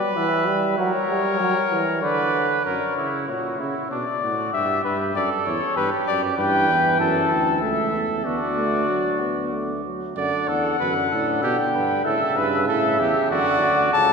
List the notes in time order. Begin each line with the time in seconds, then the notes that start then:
Already playing: B4 D5
0.16 E3 E5
0.47 G3
0.78 F#3 A#4 C#5
1.09 G3
1.40 F#3
1.71 E3
2.02 D3 B4 D5
2.65 F#2 A#4 C#5
2.97 C#3 E4
3.28 A#2 F#4 C#5
3.60 C#3 E4
3.91 B2 D4 D5
4.22 A2 F#4
4.53 G2 G4 E5
4.84 G2 B4
5.15 F#2 A4 D5
5.46 E2 C#5
5.77 G2 G4 B4
6.07 F#2 D5
6.38 G2 E3 B4 G5
6.69 E2
7.00 F#2 A4 A5
7.31 D2
7.62 C#2 A3 A4 E5
7.93 E2
8.25 D2 B3 F#4 D5
8.57 A3
8.89 F#3
9.21 B3
9.53 A3
9.85 F#3
10.16 F#2 D3 D5 F#5
10.48 E2 A4
10.80 F#2 D3 B4
11.11 A2 A4
11.43 B2 G4 G5
11.74 G2 B4
12.05 A2 C#3 A4 E5
12.36 G2 B4
12.67 A2 A4 E5
12.99 E2 G4
13.31 F#2 D3 F#4 D5
13.62 D2
13.93 C#2 C#3 A4 A5